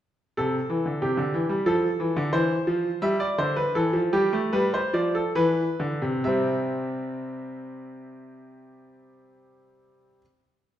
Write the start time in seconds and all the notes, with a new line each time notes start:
0.37 C3 A4
0.69 E3
0.86 D3
1.02 C3 G4
1.17 D3
1.34 E3
1.49 G3
1.66 F3 A4
2.00 E3
2.16 D3
2.33 E3 C5
2.67 F3
3.02 G3 E5
3.20 D5
3.38 D3 C5
3.56 B4
3.75 E3 A4
3.93 F3
4.13 G3 G4
4.33 A3
4.53 G3 B4
4.74 C5
4.93 F3 D5
5.15 A4
5.35 E3 B4
5.80 D3
6.02 C3
6.24 C3 G3 C4 E5